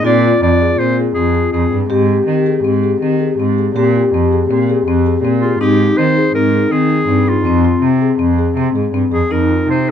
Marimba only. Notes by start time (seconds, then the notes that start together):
0.05 C4
0.24 F4
0.43 C4
0.61 G#4
0.81 C4
1.00 G#4
1.17 C4
1.35 G#4
1.54 C4
1.73 G#4
1.90 C4
2.09 G4
2.28 C4
2.46 G#4
2.65 C4
2.84 G#4
3.02 C4
3.20 G#4
3.40 C4
3.58 G#4
3.77 C4
3.96 F4
4.14 C4
4.33 G#4
4.51 C4
4.70 G#4
4.88 C4
5.06 G#4
5.25 C4
5.43 G#4
5.61 C4
5.80 G4
5.98 C4
6.17 G#4
6.35 C4
6.54 G#4
6.72 C4
6.90 G#4
7.09 C4
7.27 G#4
7.45 C4
7.65 F4
7.82 C4
8.02 G#4
8.19 C4
8.39 G#4
8.57 C4
8.75 G#4
8.94 C4
9.12 G#4
9.31 C4
9.50 F4
9.69 C4
9.87 G#4